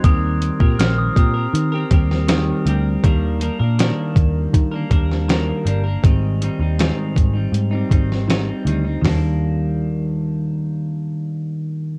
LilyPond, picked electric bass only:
\new Staff \with { instrumentName = "Picked electric bass" } { \clef bass \time 4/4 \key ees \major \tempo 4 = 80 ees,8. bes,16 bes,,8 bes,8 ees8 ees,4 d,8 | ees,8. bes,8 r16 ees,8 ees8 ees,4 g,,8 | aes,,8. ees,8 r16 aes,,8 aes,8 aes,,4 d,8 | ees,1 | }